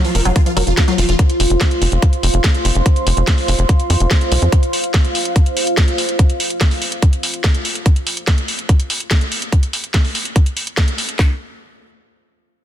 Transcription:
Already playing: F4 C5 F5 C6
0.05 F3 F4, open hi-hat
0.15 F1 F3 A#4, open hi-hat
0.25 F1 F#3 F4, closed hi-hat
0.36 F3 F4, kick, closed hi-hat
0.46 F3 F4, closed hi-hat
0.57 F1 F#3 A#4, open hi-hat
0.67 F1 F3 F4, closed hi-hat
0.77 F3 F4, kick, snare, closed hi-hat
0.88 F#3 F4, closed hi-hat
0.98 F1 F3 F4, open hi-hat
1.09 F1 F3 F4, closed hi-hat
1.19 kick, closed hi-hat
1.30 closed hi-hat
1.40 F1, open hi-hat
1.50 F1, closed hi-hat
1.61 kick, snare, closed hi-hat
1.71 closed hi-hat
1.82 F1, open hi-hat
1.92 F1, closed hi-hat
2.02 kick, closed hi-hat
2.13 closed hi-hat
2.23 F1, open hi-hat
2.34 F1, closed hi-hat
2.44 kick, snare, closed hi-hat
2.55 closed hi-hat
2.65 F1, open hi-hat
2.75 F1, closed hi-hat
2.86 kick, closed hi-hat
2.96 closed hi-hat
3.07 F1, open hi-hat
3.17 F1, closed hi-hat
3.27 kick, snare, closed hi-hat
3.38 open hi-hat
3.48 F1, open hi-hat
3.59 F1, closed hi-hat
3.69 kick, closed hi-hat
3.80 closed hi-hat
3.90 F2, open hi-hat
4.00 F1, closed hi-hat
4.11 kick, snare, closed hi-hat
4.21 closed hi-hat
4.32 C2, open hi-hat
4.42 F2, closed hi-hat
4.52 kick, closed hi-hat
4.63 closed hi-hat
4.73 open hi-hat
4.84 closed hi-hat
4.94 kick, snare, closed hi-hat
5.05 closed hi-hat
5.15 open hi-hat
5.25 closed hi-hat
5.36 kick, closed hi-hat
5.46 closed hi-hat
5.57 open hi-hat
5.67 closed hi-hat
5.77 kick, snare, closed hi-hat
5.88 closed hi-hat
5.98 open hi-hat
6.09 closed hi-hat
6.19 kick, closed hi-hat
6.30 closed hi-hat
6.40 open hi-hat
6.50 closed hi-hat
6.61 kick, snare, closed hi-hat
6.71 open hi-hat
6.82 open hi-hat
6.92 closed hi-hat
7.02 kick, closed hi-hat
7.13 closed hi-hat
7.23 open hi-hat
7.34 closed hi-hat
7.44 kick, snare, closed hi-hat
7.55 closed hi-hat
7.65 open hi-hat
7.75 closed hi-hat
7.86 kick, closed hi-hat
7.96 closed hi-hat
8.07 open hi-hat
8.17 closed hi-hat
8.27 kick, snare, closed hi-hat
8.38 closed hi-hat
8.48 open hi-hat
8.59 closed hi-hat
8.69 kick, closed hi-hat
8.80 closed hi-hat
8.90 open hi-hat
9.00 closed hi-hat
9.11 kick, snare, closed hi-hat
9.21 closed hi-hat
9.32 open hi-hat
9.42 closed hi-hat
9.52 kick, closed hi-hat
9.63 closed hi-hat
9.73 open hi-hat
9.84 closed hi-hat
9.94 kick, snare, closed hi-hat
10.05 open hi-hat
10.15 open hi-hat
10.25 closed hi-hat
10.36 kick, closed hi-hat
10.46 closed hi-hat
10.57 open hi-hat
10.67 closed hi-hat
10.77 kick, snare, closed hi-hat
10.88 closed hi-hat
10.98 open hi-hat
11.09 closed hi-hat
11.19 kick, snare, clap

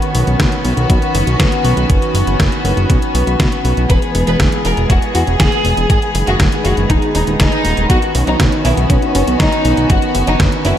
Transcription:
Already playing: D#3 B3 C#4 F#4
0.02 closed hi-hat
0.15 B1, open hi-hat
0.27 B1, closed hi-hat
0.40 B1, kick, snare, closed hi-hat
0.52 closed hi-hat
0.65 B1, open hi-hat
0.77 B1, closed hi-hat
0.90 B1, kick, closed hi-hat
1.02 closed hi-hat
1.15 F#1, open hi-hat
1.27 B1, closed hi-hat
1.40 B1, kick, snare, closed hi-hat
1.52 closed hi-hat
1.65 B1, open hi-hat
1.77 B1, closed hi-hat
1.90 F#1, kick, closed hi-hat
2.02 closed hi-hat
2.14 F#1, open hi-hat
2.27 F#1, closed hi-hat
2.40 F#1, kick, snare, closed hi-hat
2.52 closed hi-hat
2.65 F#1, open hi-hat
2.77 F#1, closed hi-hat
2.90 B1, kick, closed hi-hat
3.02 closed hi-hat
3.15 B1, open hi-hat
3.27 B1, closed hi-hat
3.40 B1, kick, snare, closed hi-hat
3.52 closed hi-hat
3.65 B1, open hi-hat
3.77 B1, closed hi-hat
3.90 E1 E3 G#3 G#4 B4, kick, closed hi-hat
4.02 closed hi-hat
4.15 E1, open hi-hat
4.27 E1 B4, closed hi-hat
4.40 E1, kick, snare, closed hi-hat
4.52 closed hi-hat
4.65 E1 A#4, open hi-hat
4.77 E1, closed hi-hat
4.90 E1 F#4, kick, closed hi-hat
5.02 closed hi-hat
5.15 E2 F#4, open hi-hat
5.27 E1, closed hi-hat
5.40 E1 G#4, kick, snare, closed hi-hat
5.52 closed hi-hat
5.65 E1, open hi-hat
5.77 E1, closed hi-hat
5.90 G#1 D#3 G#3 G#4, kick, closed hi-hat
6.02 closed hi-hat
6.15 F#1, open hi-hat
6.27 F#1 F#4, closed hi-hat
6.40 F#1, kick, snare, closed hi-hat
6.52 closed hi-hat
6.65 F#1 F#4, open hi-hat
6.77 F#1, closed hi-hat
6.90 D#1 D#4, kick, closed hi-hat
7.02 closed hi-hat
7.15 D#1 D#4, open hi-hat
7.27 D#1, closed hi-hat
7.40 D#1 D#4, kick, snare, closed hi-hat
7.52 closed hi-hat
7.65 D#1, open hi-hat
7.77 D#1, closed hi-hat
7.90 B1 B3 C#4 F#4, kick, closed hi-hat
8.02 closed hi-hat
8.15 B1, open hi-hat
8.27 B1 D#4, closed hi-hat
8.40 B1, kick, snare, closed hi-hat
8.52 closed hi-hat
8.65 B1 E4, open hi-hat
8.77 B1, closed hi-hat
8.90 B1 C#4, kick, closed hi-hat
9.02 closed hi-hat
9.15 F#1 C#4, open hi-hat
9.27 B1, closed hi-hat
9.40 B1 D#4, kick, snare, closed hi-hat
9.52 closed hi-hat
9.65 B1, open hi-hat
9.77 B1, closed hi-hat
9.90 F#1 F#4, kick, closed hi-hat
10.02 closed hi-hat
10.15 F#1, open hi-hat
10.27 F#1 D#4, closed hi-hat
10.40 F#1, kick, snare, closed hi-hat
10.52 closed hi-hat
10.65 F#1 E4, open hi-hat

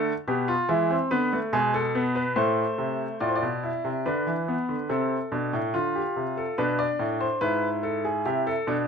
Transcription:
Already playing: D3 A3 A4
0.28 B2 B3 G4
0.48 F4
0.69 E3 G#3 E4
0.90 C4
1.11 D3 B3 B4
1.33 A3
1.53 B2 G#3 G#4
1.74 A4
1.95 B3
2.15 B4
2.36 A2 A3 C5
2.78 C3
3.21 A2 F4 D5
3.29 C5
3.36 D5
3.42 B2
3.63 E4
3.85 C3
4.06 D3 D4 B4
4.27 E3
4.48 B3
4.69 D3
4.89 C3 C4 A4
5.32 B2 D4
5.53 A2
5.74 D3 F4
5.95 G4
6.16 C3
6.37 A4
6.58 B2 D4 B4
6.79 D5
6.99 A2
7.20 C5
7.41 G#2 E4 B4
7.83 A4
8.05 G#4
8.25 C3 E4 G4
8.47 A4
8.67 B2 D4

